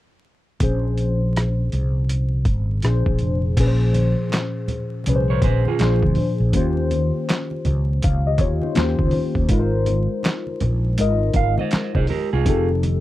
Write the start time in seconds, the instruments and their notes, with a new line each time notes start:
0.60 fretless electric bass A#1, reed electric piano A#2 F3 C#4 G#4 C5, kick, closed hi-hat
0.98 closed hi-hat
1.36 cross-stick, closed hi-hat
1.72 fretless electric bass C2, closed hi-hat
2.09 closed hi-hat
2.45 fretless electric bass G#1, kick, closed hi-hat
2.82 fretless electric bass A#1, reed electric piano A#2 F3 D4 G#4 C5, cross-stick, closed hi-hat
3.06 fretless electric bass A#1, kick
3.19 fretless electric bass F1, closed hi-hat
3.57 fretless electric bass A#1, reed electric piano A#2 F3 C#4 G#4 B4, kick, closed hi-hat, crash, muted conga
3.67 reed electric piano C5
3.94 closed hi-hat, high conga
4.30 snare, clap, closed hi-hat, muted conga
4.68 closed hi-hat, low conga
5.04 fretless electric bass C2, reed electric piano A#2 F3 C#4 G#4, closed hi-hat, muted conga
5.09 reed electric piano B4
5.16 reed electric piano C5
5.30 clean electric guitar A#4 C#5
5.42 fretless electric bass A#1, clean electric guitar G#4 C5, kick, closed hi-hat, high conga
5.65 clean electric guitar F4 G#4, high conga
5.79 fretless electric bass A#1, reed electric piano A#2 F3 D4 G#4, snare, clap, closed hi-hat, muted conga
5.83 reed electric piano C5
6.03 fretless electric bass D2, kick
6.15 open hi-hat, high conga, low conga
6.40 fretless electric bass A#1
6.53 fretless electric bass D#2, reed electric piano D#3 A#3 C#4 F4 G4 C5, kick, closed hi-hat, muted conga
6.77 muted conga
6.91 closed hi-hat, high conga
7.29 snare, clap, closed hi-hat
7.51 muted conga
7.65 fretless electric bass C#2, closed hi-hat, low conga
8.02 fretless electric bass C#2, reed electric piano F5, kick, closed hi-hat, muted conga
8.27 reed electric piano G4 D#5
8.38 fretless electric bass D#2, reed electric piano F4 C#5, kick, closed hi-hat, high conga
8.61 reed electric piano D#4 C5, high conga
8.74 fretless electric bass D#2, reed electric piano D#3 A#3 C#4 F4 F#4 C5, snare, clap, closed hi-hat, muted conga
8.84 reed electric piano G4
8.99 fretless electric bass C#2, kick
9.11 open hi-hat, high conga, low conga
9.35 fretless electric bass D#2, kick
9.49 fretless electric bass G#1, reed electric piano G#3 D#4 F4 A#4, kick, closed hi-hat
9.53 reed electric piano B4
9.59 reed electric piano C5
9.86 closed hi-hat, high conga
10.23 snare, clap, closed hi-hat, muted conga
10.47 muted conga
10.60 fretless electric bass A#1, closed hi-hat, low conga
10.98 fretless electric bass G#1, reed electric piano G#3 D#4 F4 A#4 D#5, closed hi-hat
11.34 fretless electric bass G#1, clean electric guitar F5, kick, closed hi-hat, high conga
11.58 clean electric guitar C5 D#5, high conga
11.71 muted fretless electric bass stroke, snare, clap, closed hi-hat
11.95 fretless electric bass C2, clean electric guitar G#4 C5, kick, muted conga
12.07 clean electric guitar G4 A#4, open hi-hat, high conga, low conga
12.33 fretless electric bass C2, clean electric guitar F4 G#4
12.45 fretless electric bass F1, reed electric piano F3 C4 D#4 G4 A4, kick, closed hi-hat, muted conga
12.69 muted conga
12.83 closed hi-hat, high conga